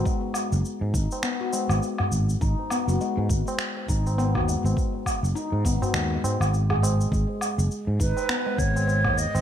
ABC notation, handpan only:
X:1
M:4/4
L:1/16
Q:"Swing 16ths" 1/4=102
K:G#m
V:1 name="Handpan"
G,4 z2 D z B, F G,4 z2 | D z B, F G,4 z2 D z B, F G,2- | G,2 z2 D z B, F G, z4 G G, z | G,4 z2 D z B, G, G,4 z2 |]